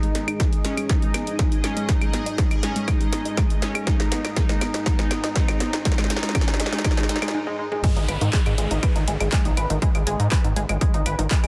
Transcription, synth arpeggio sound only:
0.03 G#3
0.15 B3
0.28 D#4
0.40 G#3
0.53 D#4
0.65 G#3
0.78 G#3
0.90 G#3
1.02 G#3
1.14 B3
1.27 D#4
1.39 G#3
1.52 D#4
1.64 G#3
1.77 G#3
1.89 G#3
2.01 G#3
2.13 B3
2.26 D#4
2.38 G#3
2.51 D#4
2.63 G#3
2.76 G#3
2.88 G#3
3.01 G#3
3.13 B3
3.25 D#4
3.37 G#3
3.50 D#4
3.62 G#3
3.75 G#3
3.87 G#3
4.00 G#3
4.12 B3
4.24 D#4
4.36 G#3
4.49 G#3
4.61 B3
4.74 D#4
4.86 G#3
4.99 G#3
5.11 B3
5.24 D#4
5.36 G#3
5.48 G#3
5.60 B3
5.73 D#4
5.85 G#3
5.98 G#3
6.10 G#3
6.23 G#3
6.35 G#3
6.48 G#3
6.60 G#3
6.73 G#3
6.84 G#3
6.97 G#3
7.09 G#3
7.22 G#3
7.34 G#3
7.47 G#3
7.59 G#3
7.72 G#3
7.84 G#3 G#4
7.96 D#4 D#5
8.09 B4 B5
8.21 D#3 D#4
8.33 G#3 G#4
8.46 G#3 G#4
8.58 G#3 G#4
8.71 D#4 D#5
8.83 B4 B5
8.96 D#3 D#4
9.08 G#3 G#4
9.21 G#3 G#4
9.32 G#3 G#4
9.45 D#4 D#5
9.57 B4 B5
9.70 D#3 D#4
9.82 G#3 G#4
9.95 G#3 G#4
10.07 G#3 G#4
10.20 D#4 D#5
10.32 B4 B5
10.44 D#3 D#4
10.56 G#3 G#4
10.69 G#3 G#4
10.81 G#3 G#4
10.94 D#4 D#5
11.06 B4 B5
11.19 D#3 D#4
11.31 G#3 G#4
11.43 G#3 G#4

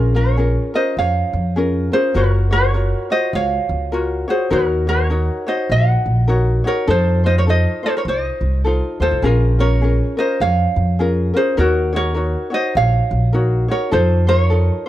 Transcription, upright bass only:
Already playing: A#1
0.97 F2
1.33 F2
2.15 F#1
3.33 C#2
3.69 C#2
4.51 D#2
5.69 A#1
6.06 A#1
6.88 F2
8.05 C2
8.41 C2
9.00 D#2
9.11 C2
9.22 A#1
10.40 F2
10.76 F2
11.58 D#2
12.75 A#1
13.11 A#1
13.92 F2

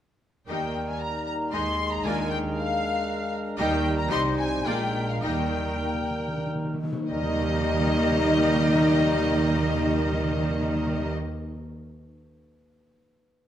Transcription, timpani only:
2.05 D#3
3.59 D#3
5.24 D#3
5.32 D#3
5.49 D#3
5.58 D#3
5.67 D#3
5.76 D#3
5.84 D#3
5.94 D#3
6.02 D#3
6.10 D#3
6.19 D#3
6.28 D#3
6.37 D#3
6.46 D#3
6.55 D#3
6.65 D#3
6.74 D#3
6.83 D#3
6.93 D#3
7.10 D#3
7.16 D#3
7.22 D#3
7.29 D#3
7.35 D#3
7.42 D#3
7.48 D#3
7.54 D#3
7.60 D#3
7.67 D#3
7.73 D#3
7.80 D#3
7.87 D#3
7.93 D#3
7.99 D#3
8.06 D#3
8.12 D#3
8.18 D#3
8.25 D#3
8.31 D#3
8.37 D#3
8.43 D#3
8.49 D#3
8.55 D#3
8.62 D#3
8.68 D#3
8.75 D#3
8.81 D#3
8.87 D#3
8.94 D#3
9.00 D#3
9.07 D#3
9.13 D#3
9.19 D#3
9.25 D#3
9.31 D#3
9.38 D#3
9.44 D#3
9.50 D#3
9.56 D#3
9.63 D#3
9.69 D#3
9.75 D#3
9.81 D#3
9.87 D#3
9.93 D#3
9.99 D#3
10.06 D#3
10.12 D#3
10.18 D#3
10.24 D#3
10.31 D#3
10.37 D#3
10.43 D#3
10.49 D#3
10.56 D#3
10.62 D#3
10.68 D#3
10.74 D#3
10.80 D#3
10.86 D#3
10.93 D#3
11.00 D#3
11.06 D#3

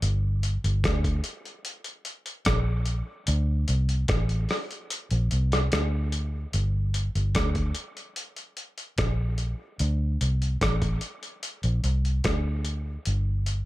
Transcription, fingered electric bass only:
0.02 G1
0.64 G1
0.84 D2
2.47 A#1
3.28 D2
3.69 C2
4.09 A1
5.11 A#1
5.32 C2
5.73 D2
6.54 G1
7.15 G1
7.35 D2
8.98 A#1
9.80 D2
10.21 C2
10.62 A1
11.64 A#1
11.84 C2
12.25 D2
13.07 G1

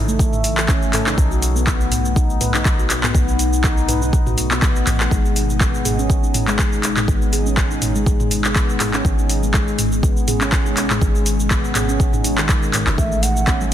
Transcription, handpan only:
0.08 A3
0.20 A3
0.69 C#4
0.93 A4
1.07 D#4
1.31 F#4
1.56 B3
1.67 B3
2.16 D#4
2.41 B4
2.54 D#4
2.79 F#4
3.03 B3
3.14 B3
3.64 D#4
3.88 B4
4.02 D#4
4.26 F#4
4.51 B3
4.62 B3
5.11 G#3
5.61 B3
5.85 G#4
5.99 C#4
6.23 D#4
6.48 G#3
6.59 G#3
7.08 B3
7.33 G#4
7.46 C#4
7.71 D#4
7.95 G#3
8.55 B3
8.80 G#4
8.93 C#4
9.18 D#4
9.43 G#3
9.54 G#3
10.03 B3
10.28 G#4
10.41 C#4
10.66 D#4
10.90 G#3
11.02 G#3
11.51 B3
11.75 G#4
11.89 C#4
12.13 D#4
12.24 D#4
12.38 D#3
12.49 G#3
12.87 D#4
12.98 A3
13.47 C#4

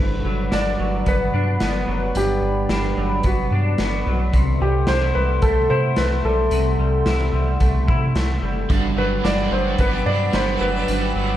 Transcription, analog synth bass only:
Already playing: G1
0.25 G1
0.52 G1
0.80 G1
1.07 G1
1.34 G2
1.61 G1
1.88 F#1
2.15 G1
2.42 G1
2.69 G1
2.97 G1
3.24 G1
3.51 G2
3.79 G1
4.07 B1
4.34 C2
4.61 C2
4.89 C2
5.16 C2
5.42 C2
5.71 C3
5.98 C2
6.24 B1
6.51 C2
6.79 C2
7.06 C2
7.33 C2
7.61 C2
7.88 C3
8.15 C2
8.42 F#1
8.70 G1
8.96 G1
9.24 G1
9.51 G1
9.79 G1
10.06 G2
10.33 G1
10.60 F#1
10.89 G1
11.15 G1

